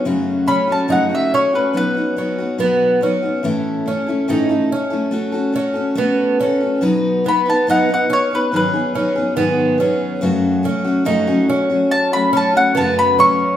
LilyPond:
<<
  \new Staff \with { instrumentName = "Mandolin" } { \time 4/4 \key fis \dorian \tempo 4 = 71 r8 b''16 a''16 fis''16 e''16 cis''16 b'16 b'2~ | b'4 r2. | r8 b''16 a''16 fis''16 fis''16 cis''16 b'16 b'2~ | b'4 r4 a''16 b''16 a''16 fis''16 a''16 b''16 cis'''8 | }
  \new Staff \with { instrumentName = "Steel-string acoustic guitar" } { \time 4/4 \key fis \dorian <fis, cis fis a cis' fis'>8 <fis a cis' fis'>16 <fis a cis' fis'>16 <fis, cis fis a cis' fis'>16 <fis a cis' fis'>8 <fis a cis' fis'>16 <b, fis b dis' fis'>16 <b dis' fis'>16 <fis b dis' fis'>16 <b dis' fis'>16 <b, fis b dis' fis'>8 <fis b dis' fis'>16 <b dis' fis'>16 | <a, e a cis' e' a'>8 <a cis' e' a'>16 <a cis' e' a'>16 <a, e a cis' e' a'>16 <a cis' e' a'>8 <a cis' e' a'>16 <a cis' fis' a'>16 <cis' fis' a'>16 <a cis' fis' a'>16 <cis' fis' a'>16 <a cis' fis' a'>8 <a cis' fis' a'>16 <cis' fis' a'>16 | <b, fis b dis' b'>8 <fis b dis' b'>16 <b dis' b'>16 <b, fis b dis' b'>16 <b dis' b'>8 <b dis' b'>16 <gis, dis fis b dis' gis'>16 <fis b dis' gis'>16 <fis b dis' gis'>16 <fis b dis' gis'>16 <gis, dis fis b dis' gis'>8 <fis b dis' gis'>8 | <fis, cis fis a cis' fis'>8 <fis a cis' fis'>16 <fis a cis' fis'>16 <fis, cis fis a cis' fis'>16 <fis a cis' fis'>8 <fis a cis' fis'>8 <fis a cis' fis'>16 <fis a cis' fis'>16 <fis a cis' fis'>16 <fis, cis fis a cis' fis'>8 <fis a cis' fis'>8 | }
  \new Staff \with { instrumentName = "Twelve-string acoustic guitar" } { \time 4/4 \key fis \dorian r8 cis'8 dis'8 cis'4 cis'8 b8 cis'8 | r8 cis'8 dis'8 cis'4 cis'8 b8 cis'8 | r8 b8 dis'8 cis'4 cis'8 b8 cis'8 | r8 cis'8 dis'8 cis'4 cis'8 b8 cis'8 | }
>>